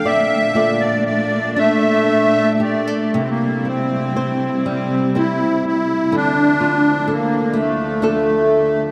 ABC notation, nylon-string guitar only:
X:1
M:6/8
L:1/16
Q:3/8=41
K:Cmix
V:1 name="Nylon-string guitar"
d2 [FAd]4 D4 G A | C,2 E2 c2 G,2 [CEc]4 | D,2 F2 A2 A,2 [DFA]4 |]